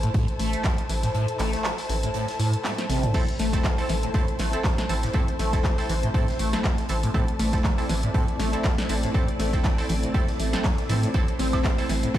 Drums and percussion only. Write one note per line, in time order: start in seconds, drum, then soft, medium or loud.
0.03 closed hi-hat medium
0.14 kick loud
0.14 closed hi-hat medium
0.28 closed hi-hat soft
0.39 closed hi-hat medium
0.39 open hi-hat loud
0.53 closed hi-hat medium
0.64 kick loud
0.64 snare loud
0.64 clap loud
0.64 closed hi-hat medium
0.78 closed hi-hat soft
0.89 closed hi-hat medium
0.89 open hi-hat loud
1.03 snare soft
1.03 closed hi-hat medium
1.15 closed hi-hat medium
1.28 closed hi-hat medium
1.39 clap medium
1.39 closed hi-hat medium
1.39 open hi-hat loud
1.53 snare soft
1.53 closed hi-hat medium
1.64 snare loud
1.64 clap loud
1.64 closed hi-hat medium
1.78 snare medium
1.78 open hi-hat medium
1.89 closed hi-hat medium
1.89 open hi-hat loud
2.03 closed hi-hat medium
2.14 closed hi-hat medium
2.28 snare medium
2.28 closed hi-hat soft
2.40 closed hi-hat medium
2.40 open hi-hat loud
2.53 closed hi-hat medium
2.65 snare loud
2.65 clap loud
2.65 closed hi-hat medium
2.65 high tom medium
2.78 snare medium
2.78 closed hi-hat medium
2.90 snare loud
2.90 closed hi-hat medium
2.90 open hi-hat loud
3.03 closed hi-hat medium
3.03 closed hi-hat soft
3.03 mid tom medium
3.14 kick loud
3.14 closed hi-hat medium
3.14 crash medium
3.28 closed hi-hat medium
3.39 snare soft
3.39 closed hi-hat medium
3.39 open hi-hat loud
3.53 kick medium
3.53 snare medium
3.53 closed hi-hat medium
3.64 kick loud
3.64 snare loud
3.64 clap loud
3.64 closed hi-hat medium
3.78 open hi-hat medium
3.89 snare soft
3.89 closed hi-hat medium
3.89 open hi-hat loud
4.03 closed hi-hat medium
4.14 kick loud
4.14 closed hi-hat medium
4.28 closed hi-hat soft
4.39 snare medium
4.39 closed hi-hat medium
4.39 open hi-hat loud
4.53 closed hi-hat medium
4.64 kick loud
4.64 snare loud
4.64 clap loud
4.64 closed hi-hat medium
4.78 snare medium
4.78 closed hi-hat medium
4.89 closed hi-hat medium
4.89 open hi-hat loud
5.03 snare soft
5.03 closed hi-hat medium
5.13 kick loud
5.13 closed hi-hat medium
5.28 closed hi-hat soft
5.39 snare soft
5.39 closed hi-hat medium
5.39 open hi-hat loud
5.53 kick medium
5.53 snare soft
5.53 closed hi-hat medium
5.64 kick loud
5.64 snare loud
5.64 clap loud
5.64 closed hi-hat medium
5.78 snare medium
5.78 open hi-hat medium
5.89 closed hi-hat medium
5.89 open hi-hat loud
6.03 closed hi-hat medium
6.14 kick loud
6.14 closed hi-hat medium
6.28 snare medium
6.28 closed hi-hat soft
6.39 closed hi-hat medium
6.39 open hi-hat loud
6.53 snare medium
6.53 closed hi-hat medium
6.64 kick loud
6.64 snare loud
6.64 clap loud
6.64 closed hi-hat medium
6.78 snare soft
6.78 closed hi-hat medium
6.89 closed hi-hat medium
6.89 open hi-hat loud
7.03 closed hi-hat medium
7.03 closed hi-hat soft
7.14 kick loud
7.14 closed hi-hat medium
7.28 closed hi-hat medium
7.39 snare soft
7.39 closed hi-hat medium
7.39 open hi-hat loud
7.53 kick medium
7.53 snare medium
7.53 closed hi-hat medium
7.64 kick loud
7.64 snare loud
7.64 clap loud
7.64 closed hi-hat medium
7.78 open hi-hat medium
7.89 snare soft
7.89 closed hi-hat medium
7.89 open hi-hat loud
8.03 closed hi-hat medium
8.14 kick loud
8.14 closed hi-hat medium
8.28 closed hi-hat soft
8.39 snare medium
8.39 closed hi-hat medium
8.39 open hi-hat loud
8.53 closed hi-hat medium
8.64 kick loud
8.64 snare loud
8.64 clap loud
8.64 closed hi-hat medium
8.78 snare medium
8.78 closed hi-hat medium
8.89 closed hi-hat medium
8.89 open hi-hat loud
9.03 snare soft
9.03 closed hi-hat medium
9.14 kick loud
9.14 closed hi-hat medium
9.28 closed hi-hat soft
9.39 snare soft
9.39 closed hi-hat medium
9.39 open hi-hat loud
9.53 kick medium
9.53 snare soft
9.53 closed hi-hat medium
9.64 kick loud
9.64 snare loud
9.64 clap loud
9.64 closed hi-hat medium
9.78 snare medium
9.78 open hi-hat medium
9.89 closed hi-hat medium
9.89 open hi-hat loud
10.03 closed hi-hat medium
10.14 kick loud
10.14 closed hi-hat medium
10.28 snare medium
10.28 closed hi-hat soft
10.40 closed hi-hat medium
10.40 open hi-hat loud
10.53 snare medium
10.53 closed hi-hat medium
10.64 kick loud
10.64 snare loud
10.64 clap loud
10.64 closed hi-hat medium
10.78 snare soft
10.78 closed hi-hat soft
10.89 closed hi-hat medium
10.89 open hi-hat loud
11.03 closed hi-hat medium
11.03 closed hi-hat soft
11.14 kick loud
11.14 closed hi-hat medium
11.28 closed hi-hat soft
11.39 snare soft
11.39 closed hi-hat medium
11.39 open hi-hat loud
11.53 kick medium
11.53 snare medium
11.53 closed hi-hat medium
11.53 high woodblock medium
11.64 kick loud
11.64 snare loud
11.64 clap loud
11.64 closed hi-hat medium
11.78 open hi-hat medium
11.89 snare soft
11.89 closed hi-hat medium
11.89 open hi-hat loud
12.03 closed hi-hat medium
12.14 kick loud
12.14 closed hi-hat medium